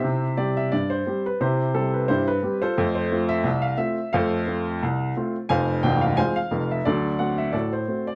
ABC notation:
X:1
M:2/4
L:1/16
Q:"Swing 16ths" 1/4=88
K:C
V:1 name="Grand piano"
[Gce]2 d e d c2 B | [EGc]2 A B [EGc] B2 [FAc]- | [FAc] c2 e2 f e2 | [Acf]4 z4 |
[cf_a]2 g f [cfa] f2 e | [^FAd]2 ^f e [FAd] c2 d |]
V:2 name="Grand piano"
[C,E]2 [G,CG]2 G,,2 [G,CG]2 | C,2 [G,CG]2 G,,2 [G,CG]2 | [F,,A,]2 [A,CF]2 C,,2 [A,CF]2 | [F,,A,]2 [A,CF]2 C,,2 [A,CF]2 |
[F,,,F,,]2 [C,,,C,,]2 [_A,CF]2 [F,,,F,,]2 | [D,,^F,]2 [A,C^F]2 A,,2 [A,CF]2 |]